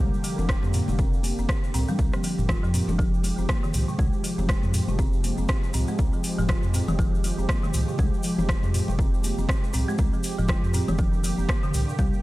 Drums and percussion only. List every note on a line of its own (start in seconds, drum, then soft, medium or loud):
0.14 shaker soft
0.24 open hi-hat medium
0.24 shaker medium
0.38 muted conga soft
0.38 high conga medium
0.38 low conga medium
0.38 shaker soft
0.49 kick loud
0.49 cross-stick loud
0.49 shaker medium
0.63 high conga medium
0.63 shaker soft
0.73 mid tom loud
0.73 open hi-hat medium
0.73 shaker medium
0.88 muted conga soft
0.88 high conga loud
0.88 shaker soft
0.99 kick loud
0.99 shaker medium
1.13 shaker soft
1.23 open hi-hat medium
1.23 muted conga medium
1.23 shaker medium
1.38 high conga medium
1.38 shaker soft
1.49 kick loud
1.49 cross-stick loud
1.49 shaker medium
1.64 muted conga soft
1.64 shaker soft
1.74 mid tom medium
1.74 open hi-hat medium
1.74 shaker medium
1.88 low conga medium
1.88 shaker soft
1.99 kick loud
1.99 muted conga medium
1.99 shaker medium
2.13 cross-stick medium
2.13 shaker soft
2.24 open hi-hat medium
2.24 shaker medium
2.38 mid tom loud
2.38 muted conga soft
2.38 shaker soft
2.49 kick loud
2.49 cross-stick loud
2.49 high conga loud
2.49 low conga loud
2.49 shaker medium
2.64 shaker soft
2.74 mid tom loud
2.74 open hi-hat loud
2.74 shaker medium
2.89 muted conga medium
2.89 high conga loud
2.89 low conga loud
2.89 shaker soft
2.99 kick loud
2.99 shaker medium
3.14 shaker soft
3.24 open hi-hat medium
3.24 muted conga medium
3.24 shaker medium
3.38 high conga medium
3.38 shaker soft
3.49 kick loud
3.49 cross-stick loud
3.49 shaker medium
3.64 muted conga soft
3.64 shaker soft
3.74 mid tom loud
3.74 open hi-hat medium
3.74 shaker loud
3.88 shaker soft
3.98 kick loud
3.98 muted conga medium
3.98 high conga loud
3.98 shaker soft
4.13 shaker soft
4.24 open hi-hat loud
4.24 shaker medium
4.38 muted conga soft
4.38 high conga loud
4.38 low conga medium
4.38 shaker soft
4.49 kick loud
4.49 cross-stick loud
4.49 shaker medium
4.63 high conga medium
4.63 shaker soft
4.74 mid tom loud
4.74 open hi-hat loud
4.74 shaker medium
4.88 muted conga medium
4.88 high conga loud
4.88 shaker soft
4.99 kick loud
4.99 shaker medium
5.13 shaker soft
5.24 open hi-hat medium
5.24 muted conga medium
5.24 shaker loud
5.38 high conga medium
5.38 shaker soft
5.48 kick loud
5.48 cross-stick loud
5.48 shaker medium
5.63 muted conga soft
5.63 shaker soft
5.74 mid tom medium
5.74 open hi-hat loud
5.74 shaker loud
5.88 shaker soft
5.98 kick loud
5.98 muted conga medium
5.98 shaker medium
6.13 shaker soft
6.24 open hi-hat loud
6.24 shaker medium
6.38 mid tom loud
6.38 muted conga soft
6.38 shaker soft
6.48 kick loud
6.48 cross-stick loud
6.48 high conga loud
6.48 low conga loud
6.48 shaker medium
6.63 shaker soft
6.74 mid tom loud
6.74 open hi-hat loud
6.74 shaker loud
6.88 muted conga soft
6.88 high conga loud
6.88 low conga loud
6.88 shaker soft
6.99 kick loud
6.99 shaker medium
7.15 shaker soft
7.24 open hi-hat medium
7.24 muted conga medium
7.24 shaker loud
7.38 high conga medium
7.38 shaker soft
7.49 kick loud
7.49 cross-stick loud
7.49 shaker medium
7.63 muted conga soft
7.63 shaker soft
7.74 mid tom medium
7.74 open hi-hat loud
7.74 shaker loud
7.88 shaker soft
7.98 kick loud
7.98 muted conga soft
7.98 high conga loud
7.98 shaker medium
8.14 shaker soft
8.23 open hi-hat loud
8.23 shaker loud
8.38 muted conga soft
8.38 high conga loud
8.38 low conga loud
8.38 shaker soft
8.49 kick loud
8.49 cross-stick loud
8.49 shaker medium
8.63 high conga medium
8.63 shaker soft
8.74 mid tom loud
8.74 open hi-hat medium
8.74 shaker loud
8.88 muted conga medium
8.88 high conga loud
8.88 shaker soft
8.99 kick loud
8.99 shaker medium
9.14 shaker soft
9.24 open hi-hat medium
9.24 muted conga soft
9.24 shaker loud
9.38 high conga medium
9.38 shaker soft
9.49 kick loud
9.49 cross-stick loud
9.49 shaker medium
9.64 muted conga soft
9.64 shaker soft
9.73 mid tom medium
9.73 open hi-hat medium
9.73 shaker medium
9.89 shaker soft
9.98 kick loud
9.98 muted conga soft
9.98 shaker medium
10.13 shaker soft
10.23 open hi-hat medium
10.23 shaker medium
10.38 mid tom medium
10.38 muted conga soft
10.38 shaker soft
10.48 kick loud
10.48 cross-stick loud
10.48 high conga loud
10.48 low conga loud
10.48 shaker medium
10.64 shaker soft
10.74 mid tom medium
10.74 open hi-hat medium
10.74 shaker medium
10.88 muted conga soft
10.88 high conga loud
10.88 low conga loud
10.88 shaker soft
10.98 kick loud
10.98 shaker medium
11.13 shaker soft
11.24 open hi-hat medium
11.24 muted conga soft
11.24 shaker loud
11.38 high conga medium
11.38 shaker soft
11.49 kick loud
11.49 cross-stick loud
11.49 shaker medium
11.63 muted conga soft
11.63 shaker soft
11.74 mid tom medium
11.74 open hi-hat medium
11.74 shaker medium
11.89 shaker soft
11.99 kick loud
11.99 muted conga soft
11.99 high conga loud
11.99 shaker medium
12.13 shaker soft